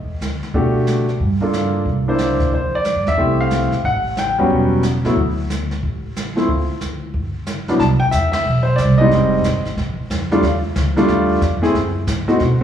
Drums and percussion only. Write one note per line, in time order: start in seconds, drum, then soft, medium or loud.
0.21 snare soft
0.21 hi-hat pedal medium
0.43 snare soft
0.54 brush sweep soft
0.54 kick soft
0.87 snare soft
0.87 hi-hat pedal medium
1.09 snare soft
1.20 brush sweep medium
1.20 kick soft
1.53 snare medium
1.53 hi-hat pedal soft
1.86 brush sweep soft
1.86 kick soft
2.18 snare medium
2.18 hi-hat pedal soft
2.40 kick soft
2.40 snare soft
2.52 brush sweep soft
2.52 kick soft
2.84 snare medium
2.84 hi-hat pedal medium
3.07 snare soft
3.18 brush sweep soft
3.18 kick soft
3.51 snare medium
3.51 hi-hat pedal medium
3.72 snare soft
3.84 brush sweep soft
3.84 kick soft
4.17 snare medium
4.17 hi-hat pedal medium
4.50 brush sweep soft
4.50 kick soft
4.83 snare medium
4.83 hi-hat pedal medium
5.05 snare soft
5.17 brush sweep medium
5.17 kick soft
5.50 snare soft
5.50 hi-hat pedal medium
5.71 snare soft
5.83 brush sweep soft
5.83 kick soft
6.16 snare medium
6.16 hi-hat pedal soft
6.37 snare soft
6.48 brush sweep soft
6.48 kick soft
6.81 snare medium
6.81 hi-hat pedal medium
7.13 brush sweep soft
7.13 kick soft
7.47 snare medium
7.47 hi-hat pedal medium
7.68 snare soft
7.80 brush sweep soft
7.80 kick soft
7.80 snare soft
8.12 kick soft
8.12 snare medium
8.12 hi-hat pedal medium
8.33 snare medium
8.33 ride medium
8.46 brush sweep medium
8.78 kick soft
8.78 snare medium
8.78 hi-hat pedal soft
9.11 brush sweep soft
9.11 kick soft
9.11 snare soft
9.44 kick soft
9.44 snare medium
9.44 hi-hat pedal medium
9.65 snare soft
9.77 brush sweep medium
9.77 kick soft
9.77 snare soft
10.10 kick soft
10.10 snare medium
10.10 hi-hat pedal medium
10.31 snare soft
10.43 brush sweep medium
10.43 kick soft
10.43 snare soft
10.76 kick soft
10.76 snare medium
10.76 hi-hat pedal medium
10.97 snare soft
11.08 brush sweep medium
11.08 kick soft
11.08 snare soft
11.41 kick soft
11.41 snare medium
11.41 hi-hat pedal soft
11.63 snare soft
11.74 brush sweep medium
11.74 kick soft
11.74 snare soft
12.07 kick soft
12.07 snare medium
12.07 hi-hat pedal medium
12.29 snare soft
12.40 brush sweep soft
12.40 kick soft
12.40 snare soft